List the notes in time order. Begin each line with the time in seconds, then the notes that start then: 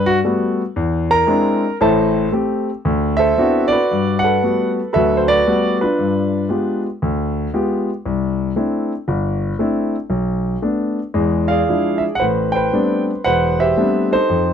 Already playing: G2
0.06 F#4
0.24 G3 A3 B3 F#4
0.76 E2
1.11 A#4 A#5
1.27 G#3 C4 D4 E4
1.81 A1 A2 A4 C5 E5 A5
2.32 A3 C4 G4
2.85 D2
3.17 A4 C5 E5
3.38 B3 C4 D4 E4 F#4
3.68 D5
3.72 F#4 B4
3.91 G2
4.19 F#5
4.24 A4 B4
4.43 G3 A3 B3 F#4
4.93 D2 F#3 A4 B4 E5
5.17 C5
5.28 F#4 B4 D5
5.47 G3 A3 B3 F#4
5.81 D4 F4 B4
5.99 G2
6.49 G#3 B3 F4 G4
7.02 D2
7.54 G#3 B3 F4 G4
8.06 C2
8.56 A3 C4 D4 E4
9.08 G1
9.59 A3 C4 D4 E4
10.10 B1
10.62 A3 B3 D4
11.14 E2 G#3
11.48 G#4 D5 F5
11.69 F3 G#3 D4 E4
11.98 E5
12.15 F#5
12.20 A1 A2 B4 C5
12.52 C5 G5
12.56 B4
12.73 G3 A3 B3 C4 D4
13.24 E1 B4 C5 F#5
13.60 G4 C5 E5
13.77 G3 A3 B3 C4 D4
14.12 D#4 A4 C5
14.30 F2